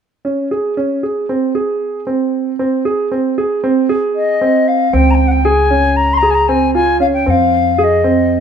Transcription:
0.25 0.47 C#4 soft
0.51 0.73 G#4 soft
0.77 0.99 C#4 soft
1.03 1.25 G#4 soft
1.29 1.51 C4 soft
1.55 1.99 G#4 soft
2.07 2.51 C4 soft
2.59 2.81 C4 medium
2.85 3.07 G#4 medium
3.12 3.33 C4 medium
3.38 3.60 G#4 medium
3.64 3.85 C4 medium
3.89 4.33 G#4 medium
4.15 4.69 D#5 medium
4.41 4.85 C4 medium
4.67 4.94 F5 medium
4.93 7.23 C#2 soft
4.93 5.37 C4 medium
4.93 5.11 G5 medium
5.10 5.28 G5 medium
5.10 5.15 A#5 medium
5.27 5.32 F#5 medium
5.27 5.45 G5 medium
5.44 5.67 G#4 medium
5.44 5.97 G#5 medium
5.70 6.15 C#4 medium
5.96 6.14 A#5 medium
6.13 6.18 C6 medium
6.17 6.31 A#5 medium
6.23 6.45 G#4 medium
6.30 6.35 G#5 medium
6.34 6.49 A#5 medium
6.47 6.71 C4 medium
6.47 6.73 G#5 medium
6.74 6.97 F4 medium
6.74 6.98 G#5 medium
7.00 7.22 C#4 soft
7.00 7.06 F5 medium
7.13 7.25 G5 medium
7.25 8.40 F2 soft
7.25 7.70 C4 soft
7.25 7.30 G5 medium
7.29 7.78 F5 medium
7.78 8.00 G#4 medium
7.78 7.84 F5 soft
7.83 8.40 D#5 medium
8.04 8.40 C4 soft

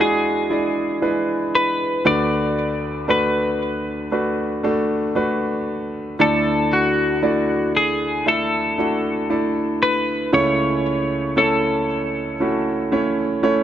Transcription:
0.00 2.02 E2 soft
0.00 2.02 E3 soft
0.00 0.50 G#3 medium
0.00 0.50 D4 medium
0.00 0.51 E4 medium
0.00 0.48 F#4 medium
0.00 1.55 G#4 medium
0.00 1.02 B4 medium
0.50 0.99 G#3 soft
0.50 1.00 D4 soft
0.50 1.00 E4 soft
0.50 1.00 D5 medium
1.02 2.00 G#3 soft
1.02 2.00 D4 soft
1.02 2.01 E4 soft
1.02 2.01 B4 medium
1.55 2.06 B4 medium
2.05 6.15 D2 soft
2.05 6.15 D3 soft
2.05 3.03 A3 medium
2.05 3.04 D4 medium
2.05 3.04 F#4 medium
2.05 3.04 B4 medium
2.05 3.06 D5 medium
3.08 4.07 A3 medium
3.08 4.07 D4 medium
3.08 4.07 F#4 soft
3.08 4.07 B4 medium
3.08 5.64 B4 medium
4.12 4.61 A3 medium
4.12 4.61 D4 soft
4.12 4.62 F#4 soft
4.12 4.62 B4 medium
4.64 5.13 A3 medium
4.64 5.13 D4 medium
4.64 5.13 F#4 soft
4.64 5.13 A4 medium
5.15 6.14 A3 medium
5.15 6.14 D4 medium
5.15 6.14 F#4 medium
5.15 6.14 B4 medium
6.19 10.29 D2 soft
6.19 10.29 D3 soft
6.19 7.18 A3 medium
6.19 7.18 D4 medium
6.19 7.18 E4 medium
6.19 6.74 A4 medium
6.19 7.18 D5 medium
6.73 7.72 F#4 medium
7.22 8.21 A3 medium
7.22 8.21 D4 medium
7.22 8.21 E4 medium
7.22 8.21 D5 medium
7.77 8.28 G#4 medium
8.26 8.75 A3 medium
8.26 8.75 D4 soft
8.26 8.76 E4 soft
8.26 9.82 A4 medium
8.26 8.76 E5 medium
8.78 9.27 A3 soft
8.78 9.27 D4 soft
8.78 9.27 E4 soft
8.78 9.28 F#4 medium
9.30 10.28 A3 soft
9.30 10.28 D4 soft
9.30 10.28 E4 soft
9.30 10.28 D5 medium
9.83 10.30 B4 medium
10.33 13.63 C#2 soft
10.33 13.63 C#3 medium
10.33 11.31 A3 medium
10.33 11.31 C#4 medium
10.33 11.32 E4 medium
10.33 11.32 C#5 medium
10.33 11.33 C#5 medium
11.36 12.35 A3 medium
11.36 12.35 C#4 medium
11.36 12.35 E4 medium
11.36 13.63 A4 medium
11.36 12.35 C#5 medium
12.40 12.89 A3 medium
12.40 12.89 C#4 soft
12.40 12.90 E4 soft
12.40 12.90 F#4 medium
12.92 13.41 A3 medium
12.92 13.41 C#4 medium
12.92 13.41 E4 medium
12.92 13.41 C#5 medium
13.43 13.63 A3 medium
13.43 13.63 C#4 medium
13.43 13.63 E4 medium
13.43 13.63 C#5 medium

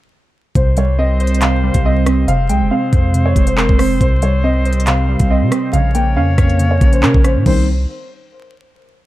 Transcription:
0.55 1.71 C2 loud
0.55 1.40 C3 medium
0.55 2.26 D#3 medium
0.55 5.69 C4 medium
0.55 2.26 G4 medium
0.55 2.26 C5 loud
0.55 0.72 C5 medium
0.55 kick loud
0.55 closed hi-hat medium
0.77 1.62 G3 medium
0.77 0.94 C#5 medium
0.77 closed hi-hat medium
0.99 1.84 C4 medium
0.99 1.39 D#5 medium
1.20 2.28 C5 medium
1.20 closed hi-hat soft
1.27 closed hi-hat medium
1.35 closed hi-hat medium
1.41 2.27 C3 medium
1.41 1.82 F5 medium
1.41 clap loud
1.41 closed hi-hat loud
1.63 2.28 G3 medium
1.74 2.26 C2 loud
1.74 kick medium
1.74 closed hi-hat medium
1.85 2.05 C4 medium
1.85 2.26 D#5 medium
2.06 2.28 C4 medium
2.06 cross-stick loud
2.06 closed hi-hat medium
2.28 2.51 F1 loud
2.28 3.13 C3 medium
2.28 3.99 F3 medium
2.28 3.99 G#4 medium
2.28 5.70 C5 loud
2.28 2.45 F5 medium
2.28 closed hi-hat medium
2.49 2.62 C2 loud
2.49 3.35 G#3 medium
2.49 2.66 G5 medium
2.49 closed hi-hat medium
2.61 2.71 F1 loud
2.71 3.56 C4 loud
2.71 3.22 F5 medium
2.93 3.34 F2 loud
2.93 4.01 C5 medium
2.93 kick medium
2.93 closed hi-hat medium
3.14 3.99 C3 medium
3.14 closed hi-hat medium
3.26 3.42 C#5 medium
3.36 3.68 F1 loud
3.36 4.01 G#3 medium
3.36 kick loud
3.36 closed hi-hat medium
3.47 3.55 C5 medium
3.47 closed hi-hat medium
3.57 3.78 C4 loud
3.57 3.74 A#4 medium
3.57 clap loud
3.69 3.99 F1 loud
3.69 kick loud
3.79 4.01 C4 loud
3.79 3.96 C5 medium
3.79 cross-stick medium
3.79 open hi-hat medium
4.00 5.16 C2 loud
4.00 4.86 C3 medium
4.00 5.72 D#3 medium
4.00 5.72 G4 medium
4.00 4.17 C5 medium
4.00 kick loud
4.00 closed hi-hat medium
4.22 5.07 G3 medium
4.22 4.39 C#5 medium
4.22 closed hi-hat medium
4.44 5.29 C4 medium
4.44 4.84 D#5 medium
4.65 5.73 C5 medium
4.65 closed hi-hat soft
4.73 closed hi-hat medium
4.80 closed hi-hat medium
4.87 5.73 C3 medium
4.87 5.28 F5 medium
4.87 clap loud
4.87 closed hi-hat loud
5.09 5.73 G3 medium
5.20 5.43 C2 loud
5.20 kick medium
5.20 closed hi-hat medium
5.30 5.51 C4 loud
5.30 5.71 D#5 medium
5.42 5.51 C3 loud
5.52 5.73 C4 medium
5.52 cross-stick loud
5.52 closed hi-hat medium
5.73 6.18 A#1 loud
5.73 6.59 C#3 medium
5.73 7.44 F3 medium
5.73 7.44 C#4 medium
5.73 7.44 A#4 medium
5.73 7.44 C#5 loud
5.73 5.89 F5 medium
5.73 closed hi-hat medium
5.95 6.80 A#3 medium
5.95 6.11 G5 medium
5.95 closed hi-hat medium
6.16 6.37 F2 loud
6.16 7.02 C#4 medium
6.16 6.68 F5 medium
6.38 6.80 F2 loud
6.38 7.46 C#5 medium
6.38 kick medium
6.38 cross-stick loud
6.38 closed hi-hat medium
6.50 closed hi-hat soft
6.59 7.46 C#3 medium
6.59 closed hi-hat loud
6.71 6.88 C#5 medium
6.81 7.04 A#1 loud
6.81 7.46 A#3 medium
6.81 kick loud
6.81 closed hi-hat medium
6.93 7.00 C5 medium
6.93 closed hi-hat medium
7.03 7.14 C#3 loud
7.03 7.23 C#4 loud
7.03 7.20 A#4 medium
7.03 clap loud
7.14 7.37 A#1 loud
7.14 kick loud
7.24 7.46 C#4 medium
7.24 7.41 C5 medium
7.24 cross-stick medium
7.24 closed hi-hat medium
7.36 7.46 A#2 loud
7.46 7.86 C2 loud
7.46 7.66 D#3 medium
7.46 7.66 G3 medium
7.46 7.66 C4 medium
7.46 7.66 D#4 medium
7.46 7.66 G4 medium
7.46 7.66 C5 medium
7.46 kick loud
7.46 crash medium

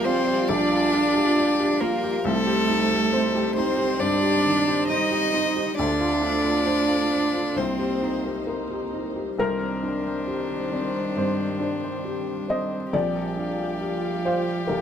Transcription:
0.00 0.45 A#1 medium
0.00 2.24 G3 medium
0.00 0.06 F4 medium
0.00 2.25 F4 medium
0.00 0.28 G4 medium
0.00 0.48 G4 loud
0.00 0.70 A#4 medium
0.00 1.38 D5 medium
0.00 2.21 D5 medium
0.00 3.07 D6 medium
0.04 0.49 C4 loud
0.04 0.41 F4 medium
0.04 0.50 C5 loud
0.04 1.14 F5 medium
0.28 0.63 G4 medium
0.48 2.22 A#1 medium
0.48 1.82 D4 loud
0.48 1.37 G4 loud
0.48 1.82 D5 loud
0.71 1.07 F4 medium
0.71 2.29 A#4 medium
0.93 1.29 D4 medium
1.15 1.50 G4 medium
1.15 1.80 F5 medium
1.38 2.69 G4 loud
1.38 1.73 D5 medium
1.60 1.95 G4 medium
1.80 2.24 A#3 loud
1.80 2.17 F4 medium
1.80 2.26 A#4 loud
1.80 2.29 F5 medium
2.04 2.26 G4 medium
2.24 3.97 C2 medium
2.24 5.78 D#3 medium
2.24 5.74 G3 medium
2.24 3.58 A3 loud
2.24 3.12 C4 medium
2.24 3.56 A4 loud
2.24 5.74 C5 medium
2.47 2.82 G4 medium
2.47 3.56 C5 medium
2.68 3.04 D#4 medium
2.68 3.34 G4 medium
2.91 3.26 G4 medium
3.12 4.00 C4 loud
3.12 3.48 C5 medium
3.35 3.70 G4 medium
3.35 3.78 G4 medium
3.56 4.02 C4 loud
3.56 3.92 D#4 medium
3.56 4.02 C5 loud
3.56 4.66 C5 medium
3.77 4.13 G4 medium
3.77 5.10 G4 medium
4.00 4.36 G2 medium
4.00 4.88 C4 loud
4.00 4.91 D4 loud
4.00 4.88 D5 loud
4.23 4.58 G4 medium
4.45 4.81 D#3 medium
4.67 5.03 G4 medium
4.67 5.32 C5 medium
4.89 7.56 C4 medium
4.89 5.77 D#4 loud
4.89 5.25 C5 medium
4.89 5.76 D#5 loud
5.11 5.47 G4 medium
5.11 5.81 G4 medium
5.34 5.69 D#4 medium
5.34 5.98 C5 medium
5.56 5.78 G4 medium
5.77 7.54 D2 medium
5.77 7.57 A3 medium
5.77 6.66 D4 medium
5.77 7.59 D4 loud
5.77 7.57 F4 medium
5.77 9.38 C5 medium
5.77 7.59 D5 loud
6.00 6.36 F4 medium
6.00 7.11 C5 medium
6.22 6.58 D4 medium
6.22 6.88 A4 medium
6.44 6.80 F4 medium
6.44 7.61 F4 medium
6.66 7.61 D4 medium
6.66 7.02 C5 medium
6.88 7.25 F4 medium
6.88 7.34 A4 medium
7.11 7.48 D4 medium
7.11 9.83 C5 medium
7.33 7.57 F4 medium
7.33 7.61 A4 medium
7.56 9.34 C2 medium
7.56 9.38 A#3 medium
7.56 8.47 C4 medium
7.56 8.48 C4 loud
7.56 9.39 D#4 medium
7.56 8.48 C5 medium
7.79 11.70 A#3 medium
7.79 8.16 G4 soft
8.02 8.39 D#4 medium
8.25 8.61 G4 soft
8.25 8.93 A#4 medium
8.47 9.39 C4 medium
8.47 8.84 A#4 medium
8.70 9.07 G4 medium
8.70 12.05 G4 medium
8.94 9.30 D#4 soft
8.94 9.43 A#4 medium
9.16 9.38 G4 soft
9.38 11.12 C2 medium
9.38 12.90 D#3 medium
9.38 12.89 G3 medium
9.38 10.05 C4 medium
9.38 12.90 D4 medium
9.38 11.13 A#4 loud
9.38 12.89 C5 medium
9.83 10.54 D4 medium
9.83 10.27 C5 medium
10.06 10.72 C4 medium
10.27 10.98 G4 medium
10.27 10.50 C5 medium
10.51 10.94 C5 medium
10.72 11.16 C4 medium
10.72 11.43 D5 medium
10.95 11.38 C5 medium
11.16 11.87 G2 medium
11.16 11.82 C4 medium
11.16 12.45 C5 medium
11.40 11.60 C5 medium
11.60 12.31 D4 medium
11.60 12.71 C5 medium
11.84 12.48 C4 medium
12.05 12.75 G4 medium
12.05 12.92 G4 medium
12.48 12.97 C4 medium
12.48 12.93 C5 soft
12.48 12.91 D#5 medium
12.72 12.97 C5 medium
12.93 14.65 A#1 medium
12.93 14.81 F3 medium
12.93 14.81 G3 medium
12.93 14.81 F4 medium
12.93 14.81 G4 medium
12.93 13.59 G4 medium
12.93 14.21 D5 loud
12.93 14.81 D5 medium
13.16 14.81 A#4 medium
13.37 14.08 D4 soft
13.37 13.81 F5 medium
13.60 14.24 G4 medium
13.81 14.52 G4 medium
13.81 14.03 F5 medium
14.04 14.46 F5 medium
14.25 14.68 G4 medium
14.25 14.66 C5 medium
14.25 14.81 F5 medium
14.47 14.81 F5 medium
14.67 14.81 A#1 medium
14.67 14.81 G4 medium
14.67 14.81 A#4 medium

